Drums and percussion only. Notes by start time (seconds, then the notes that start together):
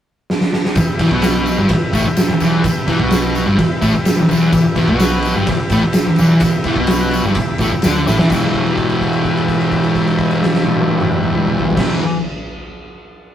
0.30 snare
0.41 snare
0.53 snare
0.65 snare
0.75 kick, ride, tambourine
0.99 kick, ride, tambourine
1.11 kick
1.22 snare, ride, tambourine
1.46 ride, tambourine
1.69 kick, ride
1.93 kick, ride, tambourine
2.16 snare, ride, tambourine
2.40 ride, tambourine
2.64 kick, ride, tambourine
2.88 kick, ride, tambourine
3.00 kick
3.10 snare, ride, tambourine
3.35 ride, tambourine
3.59 kick, ride
3.82 kick, ride, tambourine
4.05 snare, ride, tambourine
4.29 ride, tambourine
4.53 kick, ride, tambourine
4.76 kick, ride, tambourine
4.88 kick
5.00 snare, ride, tambourine
5.22 ride, tambourine
5.47 kick, ride
5.70 kick, ride, tambourine
5.93 snare, ride, tambourine
6.16 ride, tambourine
6.40 kick, ride, tambourine
6.64 kick, ride
6.76 kick
6.87 snare, ride, tambourine
7.11 ride, tambourine
7.35 kick, ride, tambourine
7.58 kick, ride, tambourine
7.82 snare, ride, tambourine
8.07 snare, tambourine
8.19 snare
8.30 kick, crash, tambourine
8.54 kick, crash
8.66 crash
8.78 kick, crash
8.89 crash
9.01 kick, crash
9.13 crash
9.25 kick, crash
9.37 crash
9.48 kick, crash
9.61 crash
9.72 kick, crash
9.84 crash
9.95 kick, crash
10.07 crash
10.19 kick, crash
10.31 crash
10.42 snare
10.54 snare
10.64 high tom
10.76 high tom
10.88 high tom
11.00 mid tom
11.12 mid tom
11.24 mid tom
11.34 mid tom
11.47 mid tom
11.59 floor tom
11.71 floor tom
11.77 kick, snare, crash